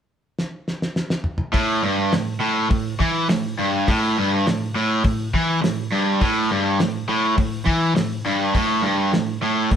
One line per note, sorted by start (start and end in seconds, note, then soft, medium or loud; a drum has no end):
0.39 snare medium
0.68 snare medium
0.82 snare medium
0.96 snare medium
1.10 snare loud
1.24 mid tom loud
1.38 mid tom loud
1.53 1.82 A2 loud
1.53 kick loud
1.53 open hi-hat medium
1.83 2.12 G2 loud
2.12 2.36 A2 medium
2.12 snare loud
2.12 open hi-hat medium
2.41 2.69 A2 medium
2.70 2.94 A2 medium
2.70 kick loud
2.70 open hi-hat medium
3.00 3.29 E3 loud
3.00 kick medium
3.29 3.53 A2 medium
3.29 snare loud
3.29 open hi-hat medium
3.59 3.87 G2 loud
3.88 4.16 A2 loud
3.88 kick loud
3.88 open hi-hat medium
4.18 4.46 G2 loud
4.47 4.70 A2 medium
4.47 snare loud
4.47 open hi-hat medium
4.75 5.03 A2 loud
5.04 5.28 A2 medium
5.04 kick loud
5.04 open hi-hat medium
5.34 5.62 E3 loud
5.34 kick medium
5.62 5.86 A2 medium
5.62 snare loud
5.62 open hi-hat medium
5.92 6.20 G2 loud
6.21 6.50 A2 loud
6.21 kick loud
6.21 open hi-hat soft
6.51 6.79 G2 loud
6.80 7.03 A2 medium
6.80 snare loud
6.80 open hi-hat medium
7.09 7.36 A2 loud
7.37 7.61 A2 medium
7.37 kick loud
7.37 open hi-hat medium
7.66 7.95 E3 loud
7.66 kick medium
7.96 8.19 A2 medium
7.96 snare loud
7.96 open hi-hat medium
8.26 8.54 G2 loud
8.54 8.82 A2 loud
8.54 kick loud
8.54 open hi-hat medium
8.82 9.11 G2 loud
9.12 9.36 A2 medium
9.12 snare loud
9.12 open hi-hat medium
9.43 9.71 A2 medium
9.71 9.76 A2 medium
9.71 kick loud
9.71 open hi-hat medium